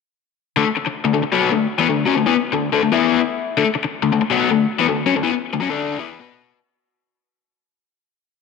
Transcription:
0.57 D3 A3
0.67 muted overdriven electric guitar stroke
0.77 muted overdriven electric guitar stroke
0.87 muted overdriven electric guitar stroke
1.05 D3 A3
1.14 D3 A3
1.24 muted overdriven electric guitar stroke
1.33 B2 F#3 B3
1.51 D3 A3
1.79 E3 B3
1.90 D3 A3
2.06 F#3 C#4
2.17 D3 A3
2.26 E3 B3
2.36 muted overdriven electric guitar stroke
2.53 D3 A3
2.72 D3 A3
2.83 D3 A3
2.92 E3 B3 E4
3.57 D3 A3
3.66 muted overdriven electric guitar stroke
3.75 muted overdriven electric guitar stroke
3.84 muted overdriven electric guitar stroke
4.03 D3 A3
4.12 D3 A3
4.22 muted overdriven electric guitar stroke
4.30 B2 F#3 B3
4.50 D3 A3
4.79 E3 B3
4.88 D3 A3
5.06 F#3 C#4
5.15 D3 A3
5.23 E3 B3
5.33 muted overdriven electric guitar stroke
5.54 D3 A3
5.61 F#3 C#4
5.70 D3 A3 D4
5.98 E3 B3 E4
6.19 B3 F#4 B4

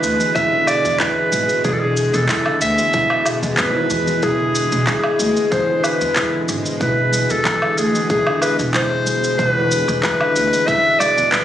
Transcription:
Already playing: B2 G#3 B4
0.03 D2, shaker
0.20 E3, shaker
0.35 E4 E5, kick, shaker
0.53 D3
0.67 D5, low woodblock, shaker
0.84 E2, shaker
1.00 E4 B4, kick, clap, shaker
1.32 G#1 G#3, shaker
1.49 shaker
1.64 E1 E3 G#4, kick, shaker
1.73 A4
1.80 D3 G#4
1.97 shaker
2.14 E1 E3 A4, shaker
2.29 E4, kick, clap, shaker
2.46 D3, low woodblock
2.61 D2 E5, shaker
2.78 shaker
2.93 E1 E4, kick, shaker
3.10 low woodblock
3.26 B2, low woodblock, shaker
3.42 E1 E3, shaker
3.57 G#1 B3 B4, kick, clap, shaker
3.75 E4
3.90 E2, shaker
4.07 E3, shaker
4.23 E1 E4 G#4, kick, shaker
4.40 D3
4.55 shaker
4.72 E1, shaker
4.87 E4 G#4, kick, clap, shaker
5.04 low woodblock
5.19 D2 G#3, shaker
5.37 shaker
5.52 E3 C5, kick, shaker
5.68 D3
5.84 B4, low woodblock, shaker
6.01 E2 E3, shaker
6.16 E4, kick, clap, shaker
6.33 D3
6.49 G#1, shaker
6.66 shaker
6.80 E1 E4 B4, kick, shaker
7.12 G#3, shaker
7.30 E1 A4, shaker
7.45 E3, kick, clap, shaker
7.62 D3, low woodblock
7.78 D2 G#4, shaker
7.94 E3, shaker
8.09 E1 E4 G#4, kick, shaker
8.27 D3, low woodblock
8.42 B4, low woodblock, shaker
8.59 E1, shaker
8.74 E4 C5, kick, clap, shaker
9.06 G#3, shaker
9.24 shaker
9.39 E1 E3 B4, kick, shaker
9.56 D3
9.71 shaker
9.88 E1 E3, shaker
10.03 E4 B4, kick, clap, shaker
10.20 D3, low woodblock
10.35 D2, shaker
10.53 shaker
10.67 E4 E5, kick, shaker
10.99 G#3 D5, low woodblock, shaker
11.17 E2, shaker
11.31 E3 B4, kick, clap, shaker

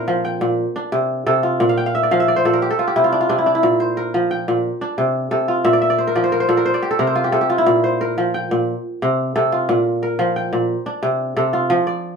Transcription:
Already playing: A#2 A#3 C4 D4 E4 G4 A#4 C5
0.08 F3
0.25 G5
0.41 A#2
0.76 D4
0.92 C3
1.26 C3 A4
1.43 F4
1.60 A#2
1.69 F5
1.77 G5
1.86 F5
1.95 E5
2.03 D5
2.11 F3 F5
2.20 E5
2.28 D5
2.36 C5
2.45 A#2 A4
2.53 A#4
2.62 G4
2.71 A4
2.79 F4
2.88 G4
2.96 C3 E4
3.04 F4
3.12 D4
3.21 F4
3.29 C3 D4
3.38 E4
3.46 D4
3.55 E4
3.63 A#2
3.80 C5
3.97 A#4
4.14 F3
4.31 G5
4.48 A#2
4.81 D4
4.98 C3
5.31 C3 A4
5.48 F4
5.65 A#2 E5
5.73 D5
5.82 E5
5.90 D5
5.98 C5
6.07 A#4
6.15 F3 D5
6.24 C5
6.32 A#4
6.40 C5
6.49 A#2 A4
6.57 A#4
6.66 C5
6.74 D5
6.83 G4
6.91 A4
6.99 C3 A#4
7.07 C5
7.15 F4
7.24 G4
7.32 C3 A4
7.41 G4
7.50 F4
7.58 E4
7.66 A#2
7.84 C5
8.01 A#4
8.18 F3
8.34 G5
8.51 A#2
9.02 C3
9.36 C3 A4
9.52 F4
9.69 A#2
10.03 A#4
10.19 F3
10.36 G5
10.53 A#2
10.86 D4
11.03 C3
11.36 C3 A4
11.53 F4
11.70 F3
11.87 D5

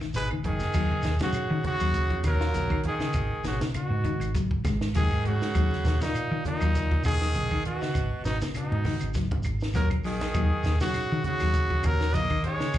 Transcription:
0.01 D#3, snare, shekere
0.14 G#1 G#3 B4, closed hi-hat, shekere
0.31 D#3, high conga, claves
0.44 F#1 D#3 G#4, kick, closed hi-hat, low conga, shekere
0.60 snare, high conga, shekere
0.73 D#2 F#3, kick, snare, crash, claves, shekere
0.92 high conga
1.03 D#2, snare, closed hi-hat, low conga, shekere
1.19 F#3 F#4, snare, high conga, shekere
1.23 C#3
1.33 muted fingered electric bass stroke, closed hi-hat, claves, shekere
1.50 D#3
1.63 C#3 F#4, closed hi-hat, high conga, low conga, shekere
1.80 D#2 F#3, closed hi-hat, claves, shekere
1.94 kick, closed hi-hat, high conga, shekere
2.10 F3, kick, closed hi-hat
2.24 D#2 F#3 A#4, kick, snare, closed hi-hat, high conga, low conga, claves, shekere
2.41 F4, snare, shekere
2.54 A#1, snare, closed hi-hat, high conga, shekere
2.70 D#3, kick, claves
2.83 G#4, closed hi-hat, low conga, shekere
2.88 D#3
3.00 C#3, snare, shekere
3.13 G#1, kick, closed hi-hat, claves, shekere
3.44 G#1 B2 C#3 F#4, snare, closed hi-hat, shekere
3.61 snare, high conga, shekere
3.74 B2 C#3 F#4, muted fingered electric bass stroke, closed hi-hat, claves, shekere
3.90 G#2
4.04 D#3, closed hi-hat, high conga, low conga, shekere
4.20 G#1, closed hi-hat, claves, shekere
4.35 F#3, kick, closed hi-hat, high conga, shekere
4.51 kick, high conga
4.64 G#1 G#3, kick, snare, closed hi-hat, high conga, claves, shekere
4.81 snare, shekere
4.94 D#2 D#3 F#3 G#4, closed hi-hat, high conga, shekere
5.11 G#2, kick, snare, closed hi-hat, claves
5.25 C#3 G#3 F#4, closed hi-hat, low conga, shekere
5.42 snare, shekere
5.55 D#2 F#3, kick, closed hi-hat, claves, shekere
5.71 snare, high conga
5.85 D#2, snare, closed hi-hat, low conga, shekere
6.01 A#2 F3 D#4, snare, high conga, shekere
6.15 muted fingered electric bass stroke, closed hi-hat, claves, shekere
6.31 D#3
6.45 A#2 D#4, closed hi-hat, high conga, low conga, shekere
6.61 D#2 F#3, closed hi-hat, claves, shekere
6.75 kick, closed hi-hat, high conga, shekere
6.91 F3, kick, closed hi-hat, high conga
7.04 D#2 D#3 G#4, kick, closed hi-hat, high conga, claves, shekere
7.21 F3, snare, shekere
7.34 A#1, closed hi-hat, high conga, shekere
7.51 D#3, kick, claves
7.65 B2 F#4, closed hi-hat, low conga, shekere
7.82 C#3, snare, shekere
7.94 G#1, kick, closed hi-hat, claves, shekere
8.25 G#1 B2 D#4, snare, closed hi-hat, low conga, shekere
8.41 snare, high conga, shekere
8.54 B2 C#3 D#4, muted fingered electric bass stroke, closed hi-hat, claves, shekere
8.72 G#2, high conga
8.84 D#3, open hi-hat, high conga, low conga, shekere
9.00 G#1, closed hi-hat, claves, shekere
9.14 F#3, kick, snare, closed hi-hat, high conga, shekere
9.31 kick, high conga
9.43 G#1, kick, closed hi-hat, claves, shekere
9.60 snare, shekere
9.74 D#2 F#3 A#4, snare, closed hi-hat, low conga, shekere
9.90 A#1, kick, closed hi-hat, claves
10.04 D#3 F#3 G#4, snare, open hi-hat, shekere
10.20 snare, low conga, shekere
10.34 D#2 F#3, kick, closed hi-hat, claves, shekere
10.63 D#2, snare, closed hi-hat, shekere
10.80 C#3 F#3 F#4, snare, high conga, shekere
10.94 muted fingered electric bass stroke, snare, closed hi-hat, claves, shekere
11.12 D#3
11.24 C#3 F#4, closed hi-hat, high conga, low conga, shekere
11.40 D#2 F#3, snare, closed hi-hat, claves, shekere
11.54 kick, closed hi-hat, high conga, shekere
11.70 F3, kick, closed hi-hat, high conga
11.83 D#2 F#3 A#4, kick, closed hi-hat, high conga, claves, shekere
11.99 F3, snare, shekere
12.13 A#1 A#3 D#5, snare, closed hi-hat, high conga, shekere
12.30 D#3, kick, claves
12.44 G#3 C#5, closed hi-hat, low conga, shekere
12.60 C#3, snare, shekere
12.73 G#1, kick, snare, closed hi-hat, claves, shekere

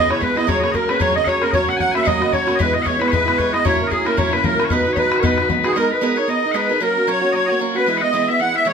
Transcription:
Already playing: G#3 B3 D#5
0.09 B3 E4 G#4 C#5, bodhran
0.20 G#3 B3 E4 G#4 B4, bodhran
0.36 B3 E4 G#4 D#5, bodhran
0.47 F#3 A#3 C#4 G#4 C#5, bodhran
0.60 C#4 G#4 C#5 D#5
0.64 A#3, bodhran
0.71 F#3 A#3 A#4 D#5, bodhran
0.76 C#4 G#4
0.88 A#3 C#4 G#4 B4, bodhran
1.00 F#3 A#3 C#4 G#4 C#5, bodhran
1.15 A#3 C#4 G#4 D#5
1.25 F#3 A#3 C#4 C#5 F#5, bodhran
1.29 G#4
1.41 A#3 C#4 G#4 A#4, bodhran
1.51 F#3 A#3 C#4 C#5 D#5, bodhran
1.55 F#4
1.67 A#3 C#4 F#4 F#5
1.76 F#3 A#3 F#5 G#5, bodhran
1.80 C#4 F#4 F#5
1.91 F#4 E5 G#5
1.95 A#3 C#4, bodhran
2.03 F#3 A#3 C#4 D#5 F#5
2.07 F#4, bodhran
2.20 A#3 C#4 F#4, bodhran
2.32 F#3 A#3 C#4 F#4 C#5, bodhran
2.47 A#3 C#4 F#4, bodhran
2.55 E3 D#5
2.59 G#3 B3 E4 B4, bodhran
2.73 G#3 B3 E4 D#5
2.82 E3 G#3 C#5 F#5
2.87 B3 E4 C#5, bodhran
2.99 G#3 B3 E4 B4, bodhran
3.08 E3 B4 C#5
3.12 G#3 B3 E4 B4, bodhran
3.25 G#3 B3 E4, bodhran
3.38 E3 G#3 B3 E4 C#5, bodhran
3.53 G#3 B3 E4 D#5, bodhran
3.65 F#3 A#3 C#4 E4 C#5, bodhran
3.79 A#3 C#4 E4 A#4
3.87 F#3 D#5
3.91 A#3 C#4 E4 G#4, bodhran
4.05 A#3 C#4 E4 A#4, bodhran
4.17 F#3 A#3 C#4 E4 C#5, bodhran
4.32 A#3 C#4 E4 B4, bodhran
4.44 F#3 A#3 C#4 E4 A#4, bodhran
4.59 A#3 C#4 E4, bodhran
4.64 C#5
4.70 B3 D#4 F#4 B4, bodhran
4.84 D#4 F#4 B4
4.93 B3 B4 C#5, bodhran
4.97 D#4 F#4 B4
5.11 D#4 F#4 B4, bodhran
5.20 B3 D#4 A#4 C#5, bodhran
5.24 F#4 B4
5.37 D#4 F#4 B4, bodhran
5.49 B3 D#4 F#4 B4, bodhran
5.63 D#4 F#4 G#4 B4, bodhran
5.73 G#3 B3 D#4 A#4 C#5
5.77 G#4 A#4
5.90 D#4 G#4 A#4 B4
6.01 G#3 B3 D#4 G#4 A#4
6.16 D#4 G#4 A#4 C#5
6.28 B3 D#4 G#4 A#4 D#5
6.43 D#4 G#4 A#4
6.52 G#3 B3 D#4 G#4 B4 F#5
6.56 A#4 B4
6.69 D#4 G#4 A#4
6.80 F#3 A#3 C#4 F#4 A#4
6.95 A#3 C#4 F#4
7.07 F#3 A#3 C#4 F#4 C#5
7.21 A#3 C#4 F#4
7.32 F#3 A#3 C#4 C#5 D#5
7.36 F#4
7.46 C#4 F#4 C#5 D#5
7.51 A#3
7.60 F#3 A#3 C#4 F#4
7.75 A#3 C#4 F#4 B4
7.86 E3 G#3 B3 E4
7.97 E4 F#5
8.01 G#3 B3 D#5
8.13 E3 G#3 B3 E4
8.28 G#3 B3 E4 E5
8.39 E3 G#3 B3 E4 F#5
8.54 G#3 B3 E4 E5
8.65 E3 G#3 B3 E4 C#5

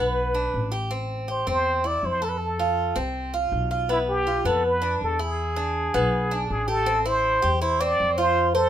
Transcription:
Already playing: B1
0.00 B3 B4
0.35 D4
0.54 A1
0.72 G4
0.91 C4
1.28 G4 C5
1.47 E2 C4 C5
1.84 E4 D5
2.03 F2 C5
2.22 A4
2.29 B4
2.38 A4
2.59 F4
2.96 C2 C4
3.34 F4
3.52 B1
3.71 F4
3.89 B3 E4
4.09 G4
4.27 F4
4.45 F2 B3 A4
4.66 B4
4.82 D4
5.01 E2 A4
5.19 E4 G#4
5.56 D4
5.94 B1 B3
6.31 D4
6.50 A1 G#4
6.68 G4 A4
6.86 C4
7.06 E4 C5
7.42 E2 G4
7.62 E4 C5
7.80 C4 D5
8.00 F2
8.17 F4 C5
8.54 A4 C5

